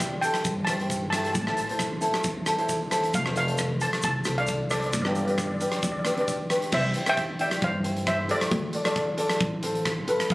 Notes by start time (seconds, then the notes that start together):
Already playing: C2 G4 D5 G5
0.00 kick, cross-stick, closed hi-hat, shaker
0.21 E4 G4 A4 G5, closed hi-hat, shaker
0.34 cross-stick, closed hi-hat
0.44 G2, kick, closed hi-hat, shaker
0.65 G2 G4 A5, cross-stick, closed hi-hat, shaker
0.69 E4 C5
0.80 E4 G4 C5, closed hi-hat
0.90 kick, closed hi-hat, shaker
1.10 E4 G4 A5, cross-stick, closed hi-hat, shaker
1.14 A4
1.19 A5
1.25 A5, closed hi-hat
1.33 A1 A5, kick, closed hi-hat, shaker
1.41 A5
1.47 E4 A4 C5 A5, cross-stick
1.57 A5, closed hi-hat, shaker
1.65 A5
1.69 E4 A4 C5, closed hi-hat
1.79 kick, cross-stick, closed hi-hat, shaker
2.01 E4 A4 C5, closed hi-hat, shaker
2.14 cross-stick, closed hi-hat
2.24 E2, kick, closed hi-hat, shaker
2.46 E2 E4 A4 C5, cross-stick, closed hi-hat, shaker
2.58 E4 A4 C5, closed hi-hat
2.69 kick, closed hi-hat, shaker
2.90 E4 A4 C5, cross-stick, closed hi-hat, shaker
3.04 closed hi-hat
3.14 F1 F5, kick, closed hi-hat, shaker
3.26 F4 A4 C5, cross-stick
3.36 F5, closed hi-hat, shaker
3.48 F4 A4 C5, closed hi-hat
3.58 kick, cross-stick, closed hi-hat, shaker
3.81 F4 A4 C5 A5, closed hi-hat, shaker
3.93 cross-stick, closed hi-hat
4.02 C2 A5, kick, closed hi-hat, shaker
4.24 C2 F4 A4 C5, cross-stick, closed hi-hat, shaker
4.38 F4 A4 D5 F5, closed hi-hat
4.47 kick, closed hi-hat, shaker
4.70 F4 A4 C5 D5, cross-stick, closed hi-hat, shaker
4.80 D5, closed hi-hat
4.86 D5
4.93 G1 D5, kick, closed hi-hat, shaker
5.02 D4 D5, cross-stick
5.06 G4 B4
5.10 D5
5.15 D5, closed hi-hat, shaker
5.25 D4 G4 B4 D5, closed hi-hat
5.30 D5
5.38 D5, kick, cross-stick, closed hi-hat, shaker
5.47 D5
5.55 D5
5.60 D4 G4 B4 D5, closed hi-hat, shaker
5.70 D5, cross-stick, closed hi-hat
5.77 D5
5.82 D2 D5, kick, closed hi-hat, shaker
5.92 D5
5.99 D5
6.04 D2 D4 G4 B4 D5, cross-stick, closed hi-hat, shaker
6.14 D4 G4 D5, closed hi-hat
6.18 B4 D5
6.28 D5, kick, closed hi-hat, shaker
6.50 D4 G4 B4, cross-stick, closed hi-hat, shaker
6.62 closed hi-hat
6.72 C2 C5 E5, kick, crash
6.94 E4 G4 C5, closed hi-hat
7.06 E4 G4 C5 E5 G5, cross-stick, closed hi-hat
7.17 kick, closed hi-hat
7.39 E4 G4 D5 E5 G5, closed hi-hat
7.51 cross-stick, closed hi-hat
7.62 G2 C5 F5, kick, closed hi-hat
7.83 E4 G4 C5, closed hi-hat
7.97 closed hi-hat
8.07 C5 E5, kick, cross-stick, closed hi-hat
8.28 E4 G4 A4 C5 D5, closed hi-hat
8.41 cross-stick, closed hi-hat
8.51 D2, kick, closed hi-hat
8.73 F4 A4 D5, closed hi-hat
8.84 F4 A4 D5, cross-stick, closed hi-hat
8.96 kick, closed hi-hat
9.17 F4 A4 D5, closed hi-hat
9.30 cross-stick, closed hi-hat
9.40 A1, kick, closed hi-hat
9.63 F4 A4 C5, closed hi-hat
9.75 closed hi-hat
9.85 kick, cross-stick, closed hi-hat
10.07 F4 A4 B4, closed hi-hat
10.20 cross-stick, closed hi-hat
10.30 F2, kick, closed hi-hat